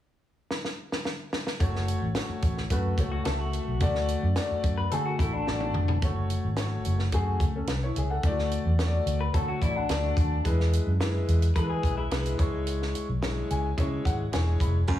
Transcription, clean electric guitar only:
3.12 F#4
3.25 A4
3.40 F#4
4.78 B4
4.92 A4
5.05 F#4
5.19 E4
5.33 D4
9.21 B4
9.34 A4
9.48 F#4
9.62 E4
9.76 D4
11.56 B4
11.70 G#4
11.97 E4

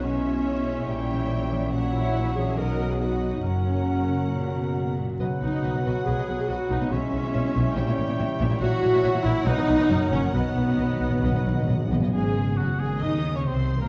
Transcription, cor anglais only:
0.04 C#5
1.72 C#5
2.58 D#5
3.00 D#5
3.43 A#4
5.20 B4
6.49 B4
6.92 C#5
7.77 C#5
8.61 C#5
9.47 B4
9.91 A#4
10.34 B4
12.13 G#4
12.57 F#4
12.80 G#4
13.03 D#5
13.36 C#5
13.47 C5
13.81 A#4

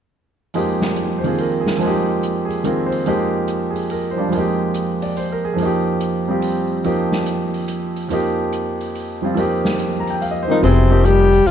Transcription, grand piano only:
0.54 F2 F3 G#3 A#3 D#4 G4
1.19 C5
1.24 D#3 A#3 C4 F4 G#4
1.41 A#4
1.61 G#4
1.77 F2 F3
1.81 G#3 A#3
1.85 D#4 G4
2.45 G#4
2.64 D#3 A#3 C4 F4 G#4 A#4
2.86 C5
3.06 F2 F3 G#3 A#3 D#4 G4
3.70 G#4
3.91 A#4
4.11 C5
4.16 F3 G3 D4 F4
4.28 F2 F3
4.32 G#3 A#3
4.37 D#4 G4
5.02 D5
5.17 C5
5.32 A#4
5.45 G#4
5.54 F2 F3
5.60 A#3 D#4
5.65 G4
6.28 G3 C4 F4 G4
6.84 F2 F3 A#3 D#4 G4
8.09 F2 F3 A#3 D#4
8.13 G4
9.22 F3 G3 C4 F4
9.34 F2 F3 A#3 D#4
9.39 G4
10.00 A#5
10.10 G5
10.21 F5
10.31 D#5
10.43 C5
10.48 F3 G3 C4 F4
10.53 A#4
10.62 F#3 B3 E4 G#4
10.90 F3 A#3 D#4 G4

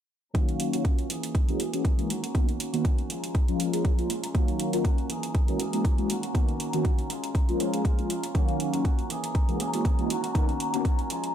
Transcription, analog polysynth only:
0.35 D#3 F#3 A#3 C#4 F5
0.73 D#3 F#3 A#3 C#4 F4
1.48 E3 G#3 A#3 C#4 F#4
1.73 E3 G#3 A#3 C#4 F#4
1.98 E3 G#3 A#3 C#4 F#4
2.34 D#3 A#3 B3 C#4 D#4
2.73 D#3 A#3 B3 C#4 F#4
3.48 F3 G#3 A#3 C#4 F4
3.73 F3 G#3 A#3 C#4 G#4
3.98 F3 G#3 A#3 C#4 F4
4.34 D#3 F#3 A#3 C#4 F5
4.73 D#3 F#3 A#3 C#4 F4
5.48 E3 G#3 A#3 C#4 F#4
5.73 E3 G#3 A#3 C#4 F#4
5.98 E3 G#3 A#3 C#4 F#4
6.34 D#3 A#3 B3 C#4 D#4
6.73 D#3 A#3 B3 C#4 F#4
7.48 F3 G#3 A#3 C#4 F4
7.73 F3 G#3 A#3 C#4 G#4
7.98 F3 G#3 A#3 C#4 F4
8.35 D#3 F#3 A#3 C#4 F5
8.73 D#3 F#3 A#3 C#4 F4
9.48 E3 G#3 A#3 C#4 F#4
9.73 E3 G#3 A#3 C#4 F#4
9.98 E3 G#3 A#3 C#4 F#4
10.35 D#3 A#3 B3 C#4 D#4
10.73 D#3 A#3 B3 C#4 F#4

